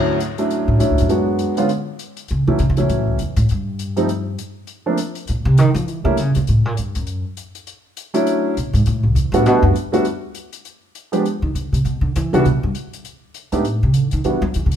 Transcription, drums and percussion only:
0.20 closed hi-hat soft
0.38 closed hi-hat soft
0.50 closed hi-hat soft
0.80 closed hi-hat soft
0.98 closed hi-hat soft
1.09 closed hi-hat soft
1.39 closed hi-hat soft
1.57 closed hi-hat soft
1.69 closed hi-hat soft
1.99 closed hi-hat soft
2.17 closed hi-hat soft
2.28 closed hi-hat soft
2.59 closed hi-hat soft
2.77 closed hi-hat soft
2.89 closed hi-hat soft
3.19 closed hi-hat soft
3.36 closed hi-hat soft
3.49 closed hi-hat soft
3.79 closed hi-hat soft
3.97 closed hi-hat soft
4.09 closed hi-hat soft
4.38 closed hi-hat soft
4.67 closed hi-hat soft
4.97 closed hi-hat soft
5.15 closed hi-hat soft
5.27 closed hi-hat soft
5.58 closed hi-hat soft
5.76 closed hi-hat soft
5.88 closed hi-hat soft
6.17 closed hi-hat soft
6.35 closed hi-hat soft
6.47 closed hi-hat soft
6.77 closed hi-hat soft
6.95 closed hi-hat soft
7.07 closed hi-hat soft
7.37 closed hi-hat soft
7.55 closed hi-hat soft
7.67 closed hi-hat soft
7.97 closed hi-hat soft
8.14 closed hi-hat soft
8.27 closed hi-hat soft
8.57 closed hi-hat soft
8.75 closed hi-hat soft
8.86 closed hi-hat soft
9.16 closed hi-hat soft
9.33 closed hi-hat soft
9.46 closed hi-hat soft
9.75 closed hi-hat soft
9.93 closed hi-hat soft
10.05 closed hi-hat soft
10.35 closed hi-hat soft
10.53 closed hi-hat soft
10.65 closed hi-hat soft
10.95 closed hi-hat soft
11.13 closed hi-hat soft
11.25 closed hi-hat soft
11.55 closed hi-hat soft
11.74 closed hi-hat soft
11.85 closed hi-hat soft
12.16 closed hi-hat soft
12.34 closed hi-hat soft
12.45 closed hi-hat soft
12.75 closed hi-hat soft
12.93 closed hi-hat soft
13.05 closed hi-hat soft
13.34 closed hi-hat soft
13.52 closed hi-hat soft
13.65 closed hi-hat soft
13.94 closed hi-hat soft
14.11 closed hi-hat soft
14.24 closed hi-hat soft
14.54 closed hi-hat soft
14.71 closed hi-hat soft

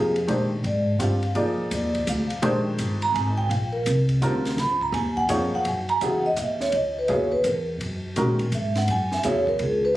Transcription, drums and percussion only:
0.16 ride soft
0.28 ride medium
0.64 ride soft
1.00 hi-hat pedal soft
1.00 ride medium
1.23 ride soft
1.35 ride medium
1.71 hi-hat pedal medium
1.71 ride medium
1.95 kick soft
1.95 ride soft
2.07 hi-hat pedal medium
2.07 ride medium
2.30 ride soft
2.42 ride medium
2.78 hi-hat pedal medium
2.78 ride medium
3.02 ride soft
3.15 ride medium
3.39 kick medium
3.51 ride medium
3.86 hi-hat pedal medium
3.86 ride medium
4.09 ride soft
4.22 hi-hat pedal medium
4.22 ride medium
4.45 snare soft
4.45 ride soft
4.58 snare soft
4.58 ride medium
4.81 kick medium
4.94 ride medium
5.17 kick medium
5.29 hi-hat pedal soft
5.29 ride medium
5.65 ride medium
5.89 ride soft
6.01 hi-hat pedal medium
6.01 ride medium
6.36 hi-hat pedal medium
6.36 ride medium
6.60 snare soft
6.72 ride medium
7.08 ride medium
7.32 kick soft
7.44 hi-hat pedal medium
7.44 ride medium
7.81 ride medium
8.16 hi-hat pedal soft
8.16 ride medium
8.39 ride soft
8.52 hi-hat pedal medium
8.52 ride medium
8.75 snare soft
8.75 ride soft
8.88 ride medium
9.12 snare soft
9.23 hi-hat pedal medium
9.23 ride medium
9.47 kick medium
9.59 ride medium

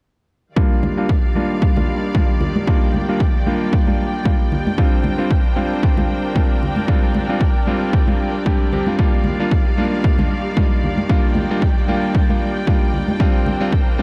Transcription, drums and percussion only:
0.57 kick loud
0.83 high conga medium
0.83 low conga medium
1.09 kick medium
1.36 high conga medium
1.62 kick loud
1.76 high conga medium
1.76 low conga medium
2.15 kick medium
2.15 high conga medium
2.41 low conga medium
2.56 high conga medium
2.67 kick loud
2.94 high conga medium
2.94 low conga medium
3.20 kick medium
3.47 high conga medium
3.73 kick loud
3.87 high conga medium
4.25 kick loud
4.25 high conga medium
4.52 low conga medium
4.67 high conga medium
4.78 kick loud
5.04 high conga medium
5.04 low conga medium
5.31 kick loud
5.57 high conga medium
5.83 kick loud
5.97 high conga loud
5.97 low conga medium
6.36 kick loud
6.36 high conga medium
6.63 low conga medium
6.76 high conga medium
6.88 kick loud
7.14 high conga medium
7.14 low conga medium
7.41 kick loud
7.67 high conga medium
7.93 kick loud
8.08 high conga medium
8.46 kick loud
8.46 high conga medium
8.72 low conga medium
8.87 high conga medium
8.99 kick loud
9.24 high conga medium
9.24 low conga medium
9.51 kick medium
9.78 high conga medium
10.04 kick loud
10.19 high conga medium
10.19 low conga medium
10.57 kick medium
10.57 high conga medium
10.84 low conga medium
10.98 high conga medium
11.10 kick loud
11.35 high conga medium
11.35 low conga medium
11.62 kick medium
11.89 high conga medium
12.15 kick loud
12.30 high conga medium
12.67 kick medium
12.67 high conga medium
12.94 low conga medium
13.08 high conga medium
13.20 kick loud
13.46 high conga medium
13.46 low conga medium
13.72 kick medium
13.99 high conga medium

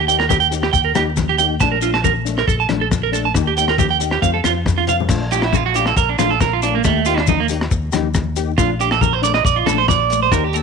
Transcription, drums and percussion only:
0.09 closed hi-hat soft
0.09 shekere medium
0.20 cross-stick medium
0.30 kick medium
0.30 high conga medium
0.30 shekere medium
0.52 closed hi-hat soft
0.52 muted conga soft
0.52 shekere medium
0.63 cross-stick medium
0.74 kick medium
0.74 muted conga soft
0.74 shekere medium
0.95 cross-stick medium
0.95 closed hi-hat soft
0.95 muted conga soft
0.95 high conga medium
0.95 shekere medium
1.17 kick medium
1.17 cross-stick medium
1.17 high conga medium
1.17 shekere medium
1.39 closed hi-hat soft
1.39 shekere medium
1.60 kick medium
1.60 cross-stick medium
1.60 muted conga soft
1.60 shekere medium
1.82 closed hi-hat soft
1.82 shekere medium
1.94 cross-stick medium
2.04 kick medium
2.04 high conga medium
2.04 shekere loud
2.26 closed hi-hat soft
2.26 muted conga soft
2.26 shekere medium
2.38 cross-stick medium
2.48 kick medium
2.48 muted conga soft
2.48 shekere loud
2.69 cross-stick medium
2.69 closed hi-hat soft
2.69 muted conga soft
2.69 high conga medium
2.91 kick medium
2.91 cross-stick medium
2.91 high conga medium
2.91 shekere medium
3.13 closed hi-hat soft
3.13 shekere medium
3.34 kick medium
3.34 cross-stick medium
3.34 shekere medium
3.57 closed hi-hat medium
3.57 shekere medium
3.68 cross-stick medium
3.78 kick medium
3.78 high conga medium
3.78 low conga medium
3.78 shekere loud
4.00 closed hi-hat soft
4.00 muted conga soft
4.00 shekere medium
4.11 cross-stick medium
4.22 kick medium
4.22 shekere medium
4.44 cross-stick medium
4.44 closed hi-hat soft
4.44 muted conga soft
4.44 high conga medium
4.44 shekere medium
4.66 kick medium
4.66 cross-stick medium
4.66 high conga medium
4.66 shekere medium
4.79 high conga soft
4.87 closed hi-hat soft
4.87 low conga medium
4.87 shekere medium
5.00 low conga medium
5.09 kick medium
5.09 cross-stick medium
5.09 crash medium
5.09 shekere medium
5.31 closed hi-hat soft
5.31 shekere medium
5.42 cross-stick medium
5.53 kick medium
5.53 high conga medium
5.53 shekere medium
5.74 closed hi-hat soft
5.74 muted conga soft
5.74 shekere medium
5.86 cross-stick medium
5.97 kick medium
5.97 muted conga soft
5.97 shekere medium
6.19 cross-stick medium
6.19 closed hi-hat soft
6.19 muted conga soft
6.19 high conga medium
6.19 shekere medium
6.41 kick medium
6.41 cross-stick medium
6.41 high conga medium
6.41 shekere medium
6.62 closed hi-hat medium
6.62 shekere medium
6.84 kick medium
6.84 cross-stick medium
6.84 shekere medium
7.05 closed hi-hat soft
7.05 shekere medium
7.18 cross-stick medium
7.27 kick medium
7.27 high conga medium
7.27 shekere medium
7.49 closed hi-hat medium
7.49 muted conga soft
7.49 shekere medium
7.61 cross-stick medium
7.71 kick medium
7.71 muted conga soft
7.71 shekere medium
7.92 cross-stick medium
7.92 closed hi-hat medium
7.92 muted conga soft
7.92 high conga medium
7.92 shekere medium
8.14 kick medium
8.14 cross-stick medium
8.14 high conga medium
8.14 shekere medium
8.36 closed hi-hat soft
8.36 shekere medium
8.58 kick medium
8.58 cross-stick medium
8.58 shekere medium
8.80 closed hi-hat soft
8.80 shekere medium
8.91 cross-stick medium
9.01 kick medium
9.01 high conga medium
9.01 shekere loud
9.23 closed hi-hat soft
9.23 muted conga soft
9.23 shekere medium
9.34 cross-stick medium
9.45 kick medium
9.45 muted conga soft
9.45 shekere loud
9.66 cross-stick medium
9.66 closed hi-hat soft
9.66 muted conga soft
9.66 high conga medium
9.66 shekere medium
9.88 kick medium
9.88 cross-stick medium
9.88 high conga medium
9.88 shekere medium
10.10 closed hi-hat soft
10.10 shekere medium
10.32 kick medium
10.32 cross-stick medium
10.32 shekere medium
10.53 closed hi-hat soft
10.53 shekere medium

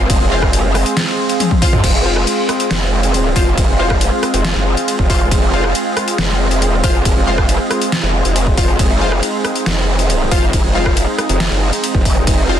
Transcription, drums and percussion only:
0.10 kick loud
0.10 closed hi-hat medium
0.10 ride medium
0.42 kick medium
0.42 cross-stick medium
0.53 closed hi-hat medium
0.53 ride soft
0.75 cross-stick medium
0.75 open hi-hat medium
0.86 closed hi-hat medium
0.97 snare loud
0.97 closed hi-hat medium
0.97 ride medium
1.29 closed hi-hat medium
1.40 closed hi-hat medium
1.40 high tom medium
1.40 ride soft
1.51 kick medium
1.51 high tom medium
1.62 kick loud
1.62 open hi-hat loud
1.73 mid tom medium
1.84 kick loud
1.84 closed hi-hat medium
1.84 crash medium
1.84 ride medium
2.16 cross-stick medium
2.27 closed hi-hat medium
2.27 ride soft
2.49 cross-stick medium
2.49 closed hi-hat medium
2.60 closed hi-hat medium
2.71 cross-stick medium
2.71 snare loud
2.71 closed hi-hat medium
2.71 ride medium
3.03 closed hi-hat medium
3.14 closed hi-hat medium
3.14 ride soft
3.36 kick loud
3.36 open hi-hat loud
3.58 kick loud
3.58 closed hi-hat medium
3.58 ride medium
3.90 kick medium
3.90 cross-stick medium
4.01 closed hi-hat medium
4.01 ride soft
4.23 cross-stick medium
4.23 closed hi-hat medium
4.34 closed hi-hat medium
4.45 snare loud
4.45 closed hi-hat medium
4.45 ride medium
4.77 closed hi-hat medium
4.88 closed hi-hat medium
4.88 ride soft
4.99 kick medium
5.10 kick loud
5.10 open hi-hat loud
5.31 kick loud
5.31 closed hi-hat medium
5.31 ride medium
5.64 cross-stick medium
5.75 closed hi-hat medium
5.75 ride soft
5.97 cross-stick medium
5.97 closed hi-hat medium
6.08 closed hi-hat medium
6.18 cross-stick medium
6.18 snare loud
6.18 closed hi-hat medium
6.18 ride medium
6.51 closed hi-hat medium
6.62 closed hi-hat medium
6.62 ride soft
6.84 kick loud
6.84 open hi-hat medium
7.05 kick loud
7.05 closed hi-hat medium
7.05 ride medium
7.38 kick medium
7.38 cross-stick medium
7.49 closed hi-hat medium
7.49 ride soft
7.71 cross-stick medium
7.71 closed hi-hat medium
7.82 closed hi-hat medium
7.92 snare loud
7.92 closed hi-hat medium
7.92 ride medium
8.25 closed hi-hat medium
8.36 closed hi-hat medium
8.36 ride soft
8.47 kick medium
8.57 kick loud
8.57 open hi-hat medium
8.79 kick loud
8.79 closed hi-hat medium
8.79 ride medium
9.12 cross-stick medium
9.23 closed hi-hat medium
9.23 ride soft
9.45 cross-stick medium
9.45 closed hi-hat medium
9.55 closed hi-hat medium
9.66 cross-stick medium
9.66 snare loud
9.66 closed hi-hat medium
9.66 ride medium
9.99 closed hi-hat medium
10.10 closed hi-hat medium
10.10 ride soft
10.31 kick loud
10.31 open hi-hat medium
10.53 kick loud
10.53 closed hi-hat medium
10.53 ride medium
10.86 kick medium
10.86 cross-stick medium
10.97 closed hi-hat medium
10.97 ride soft
11.18 cross-stick medium
11.18 closed hi-hat medium
11.29 closed hi-hat medium
11.40 snare loud
11.40 closed hi-hat medium
11.40 ride medium
11.73 closed hi-hat medium
11.84 closed hi-hat medium
11.84 ride soft
11.95 kick medium
12.05 kick loud
12.05 open hi-hat loud
12.27 kick loud
12.27 closed hi-hat medium
12.27 ride medium

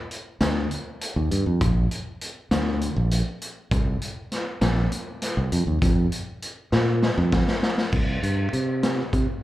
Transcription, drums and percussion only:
0.11 closed hi-hat soft
0.41 snare medium
0.41 closed hi-hat medium
0.71 closed hi-hat medium
1.01 closed hi-hat medium
1.31 closed hi-hat medium
1.61 kick loud
1.61 closed hi-hat medium
1.91 closed hi-hat medium
2.21 closed hi-hat medium
2.51 snare loud
2.51 closed hi-hat medium
2.81 closed hi-hat medium
3.11 closed hi-hat medium
3.42 closed hi-hat medium
3.71 kick loud
3.71 closed hi-hat medium
4.02 closed hi-hat medium
4.32 snare soft
4.32 closed hi-hat medium
4.61 snare loud
4.61 closed hi-hat medium
4.92 closed hi-hat medium
5.22 snare soft
5.22 closed hi-hat medium
5.52 closed hi-hat medium
5.82 kick loud
5.82 closed hi-hat medium
6.12 closed hi-hat medium
6.42 closed hi-hat medium
6.72 snare medium
7.02 snare medium
7.32 kick medium
7.32 snare medium
7.48 snare medium
7.63 snare medium
7.78 snare medium
7.93 kick loud
7.93 crash medium
8.23 closed hi-hat medium
8.53 closed hi-hat medium
8.83 snare medium
8.83 closed hi-hat medium
9.13 kick medium
9.13 closed hi-hat medium

